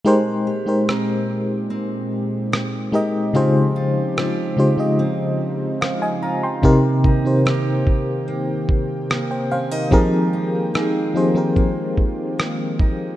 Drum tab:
SD |--r---r-|--r---r-|--r---r-|--r---r-|
BD |--------|--------|oo-o-o--|o---oo-o|